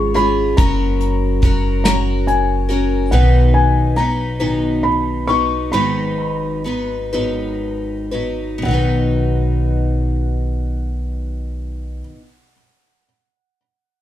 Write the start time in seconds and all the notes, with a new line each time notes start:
Already playing: G#1 G#2 F3 G#3 C#4 F4 G#4 C#6
0.14 G#3 C#4 F4 G#4 B5, closed hi-hat
0.57 F#1 F#3 C#4 F#4 A#4 A#5, kick, closed hi-hat
1.00 closed hi-hat
1.42 F#3 C#4 F#4 A#4, kick, closed hi-hat
1.84 F#3 C#4 F#4 A#4 A#5, snare, closed hi-hat
2.27 G#5, closed hi-hat
2.69 C#4 F#4 A#4, closed hi-hat
3.11 B1 B2 D#3 F#3 B3 D#4 B4 F#5
3.54 G#5
3.96 F#3 B3 D#4 B4 A#5
4.40 B2 D#3 F#3 B3 D#4 B4
4.83 B5
5.27 F#3 B3 D#4 B4 C#6
5.72 G#1 G#2 D#3 F#3 B3 D#4 B4 B5
6.64 F#3 B3 D#4 B4
7.13 G#2 D#3 F#3 B3 D#4 B4
8.11 F#3 B3 D#4 B4
8.58 B2
8.62 B1 D#3 F#3 F#5
8.68 B3 D#4
8.74 B4